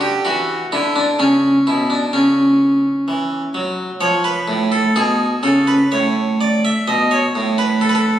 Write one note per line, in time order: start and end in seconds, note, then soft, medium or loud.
0.00 0.11 D3 medium
0.00 0.24 G4 medium
0.25 0.59 E3 medium
0.25 0.65 F#4 medium
0.72 1.06 D3 medium
0.72 0.96 E4 medium
0.96 1.19 D4 medium
1.19 1.53 C#3 medium
1.19 1.66 C#4 medium
1.67 2.00 B2 medium
1.67 1.90 E4 medium
1.90 2.13 D4 medium
2.13 2.81 C#3 soft
2.13 3.52 C#4 medium
3.08 3.41 E3 medium
3.54 3.88 F#3 medium
4.01 4.35 F3 medium
4.01 4.24 C#5 loud
4.24 4.72 B4 medium
4.48 4.82 A2 medium
4.72 4.95 A4 medium
4.96 5.30 B2 medium
4.96 5.44 G#4 medium
5.43 5.78 C#3 medium
5.43 5.68 A4 medium
5.67 5.92 B4 medium
5.92 6.61 A2 medium
5.92 6.40 C#5 medium
6.41 6.65 D5 medium
6.65 6.88 E5 medium
6.88 7.22 B2 medium
6.88 7.12 D#5 medium
7.11 7.52 C#5 medium
7.35 8.19 A2 soft
7.58 7.82 B4 medium
7.81 7.89 A4 medium
7.89 7.96 B4 medium
7.95 8.19 A4 medium